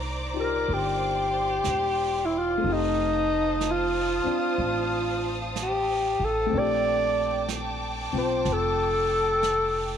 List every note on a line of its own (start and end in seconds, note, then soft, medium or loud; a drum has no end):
0.00 0.63 C2 medium
0.00 2.62 A#3 soft
0.00 2.63 D4 soft
0.00 0.32 D#4 soft
0.00 0.34 G4 soft
0.00 2.57 C5 soft
0.00 2.60 D5 soft
0.00 0.66 A#5 soft
0.00 2.60 D6 medium
0.33 2.63 D#4 soft
0.33 2.63 F4 soft
0.33 2.64 G4 soft
0.40 0.75 A#4 medium
0.65 1.62 G1 medium
0.65 2.60 C6 soft
0.65 brush sweep soft
0.74 2.27 G4 medium
1.64 2.60 E1 medium
1.64 brush sweep soft
1.64 snare soft
1.64 hi-hat pedal soft
2.25 2.40 E4 soft
2.38 2.74 F4 medium
2.58 6.45 A3 soft
2.58 4.22 C4 soft
2.58 6.46 C5 medium
2.58 6.46 F5 soft
2.58 6.47 A5 medium
2.58 6.46 D#6 medium
2.63 4.22 F1 medium
2.63 6.53 D#4 soft
2.63 brush sweep soft
2.69 6.56 G4 soft
2.73 3.72 D#4 medium
3.61 brush sweep soft
3.61 snare soft
3.61 hi-hat pedal soft
3.71 5.43 F4 medium
4.24 6.48 C4 soft
4.24 6.53 D4 soft
4.24 muted upright bass stroke soft
4.58 6.16 A1 medium
4.58 brush sweep soft
5.56 brush sweep soft
5.56 snare soft
5.56 hi-hat pedal soft
5.62 6.26 G4 medium
6.19 6.50 A1 medium
6.24 6.60 A4 medium
6.46 9.97 A3 soft
6.46 8.11 C4 soft
6.46 9.97 G5 medium
6.46 9.97 A5 medium
6.46 9.97 D6 medium
6.52 8.10 A#1 medium
6.52 9.97 D4 soft
6.52 brush sweep soft
6.57 9.97 G4 soft
6.57 7.52 D5 medium
7.49 brush sweep soft
7.49 snare soft
7.49 hi-hat pedal soft
8.12 8.44 B1 medium
8.12 9.97 C4 soft
8.12 9.97 F4 soft
8.17 8.54 C5 medium
8.45 9.97 F1 medium
8.45 brush sweep soft
8.45 snare soft
8.52 9.97 A4 medium
9.43 brush sweep soft
9.43 snare soft
9.43 hi-hat pedal soft